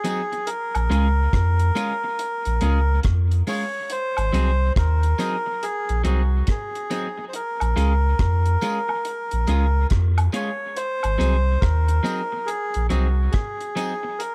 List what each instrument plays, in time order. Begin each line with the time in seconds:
Already playing: melodica G#4
0.04 clean electric guitar F#3 C4 D#4 G#4, closed hi-hat, tambourine
0.32 muted clean electric guitar stroke, closed hi-hat
0.46 melodica A#4, closed hi-hat
0.75 sub bass A#1, closed hi-hat, high woodblock
0.90 sub bass C#2, clean electric guitar G#3 C#4 F4 G#4, closed hi-hat, tambourine
1.33 sub bass F2, kick, cross-stick, closed hi-hat
1.59 closed hi-hat
1.75 clean electric guitar G#3 C#4 F4 G#4, closed hi-hat, tambourine
2.04 muted clean electric guitar stroke
2.19 closed hi-hat
2.45 sub bass A#1, closed hi-hat
2.61 sub bass C#2, clean electric guitar G#3 C#4 F4 G#4, closed hi-hat, tambourine
3.03 sub bass F2, kick, cross-stick, closed hi-hat
3.31 closed hi-hat
3.47 clean electric guitar G#3 C#4 F4 G#4, melodica C#5, open hi-hat, tambourine
3.90 melodica C5, closed hi-hat
4.17 sub bass G#1, closed hi-hat, high woodblock
4.33 sub bass C2, clean electric guitar F#3 C4 D#4 G#4, closed hi-hat, tambourine
4.76 sub bass D#2, melodica A#4, kick, cross-stick, closed hi-hat
5.03 closed hi-hat
5.18 clean electric guitar F#3 C4 D#4 G#4, closed hi-hat, tambourine
5.46 muted clean electric guitar stroke
5.63 melodica G#4, closed hi-hat
5.89 sub bass A#1, closed hi-hat
6.04 sub bass C2, clean electric guitar F#3 C4 D#4 G#4, melodica F#4, closed hi-hat, tambourine
6.47 melodica G#4, kick, cross-stick, closed hi-hat
6.75 closed hi-hat
6.90 clean electric guitar F#3 C4 D#4 G#4, closed hi-hat, tambourine
7.18 muted clean electric guitar stroke
7.29 melodica C5
7.33 melodica A#4, closed hi-hat
7.60 sub bass A#1, closed hi-hat, high woodblock
7.76 sub bass C#2, clean electric guitar G#3 C#4 F4 G#4, closed hi-hat, tambourine
8.19 sub bass F2, kick, cross-stick, closed hi-hat
8.46 closed hi-hat
8.61 clean electric guitar G#3 C#4 F4 G#4, closed hi-hat, tambourine
8.88 muted clean electric guitar stroke, high woodblock
9.05 closed hi-hat
9.31 sub bass A#1, closed hi-hat
9.47 sub bass C#2, clean electric guitar G#3 C#4 F4 G#4, closed hi-hat, tambourine
9.90 sub bass F2, kick, cross-stick, closed hi-hat
10.18 closed hi-hat, high woodblock
10.32 clean electric guitar G#3 C#4 F4 G#4, melodica C#5, closed hi-hat, tambourine
10.76 melodica C5, closed hi-hat
11.03 sub bass G#1, closed hi-hat, high woodblock
11.18 sub bass C2, clean electric guitar F#3 C4 D#4 G#4, closed hi-hat, tambourine
11.61 sub bass D#2, melodica A#4, kick, cross-stick, closed hi-hat
11.88 closed hi-hat
12.03 clean electric guitar F#3 C4 D#4 G#4, closed hi-hat, tambourine
12.32 muted clean electric guitar stroke
12.46 melodica G#4, closed hi-hat
12.74 sub bass A#1, closed hi-hat
12.90 sub bass C2, clean electric guitar F#3 C4 D#4 G#4, melodica F#4, closed hi-hat, tambourine
13.31 melodica G#4, kick, cross-stick, closed hi-hat
13.61 closed hi-hat
13.75 clean electric guitar F#3 C4 D#4 G#4, closed hi-hat, tambourine
14.03 muted clean electric guitar stroke
14.19 melodica A#4, closed hi-hat